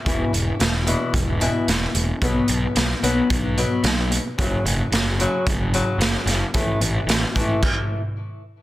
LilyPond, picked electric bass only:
\new Staff \with { instrumentName = "Picked electric bass" } { \clef bass \time 4/4 \key fis \phrygian \tempo 4 = 111 e,,8 e,,8 e,,4 e,,4 e,,8 e,,8 | b,,8 b,,8 b,,8 b,,8 b,,4 b,,4 | fis,,8 fis,,8 fis,,4 fis,,4 fis,,8 fis,,8 | a,,8 a,,8 a,,8 a,,8 r2 | }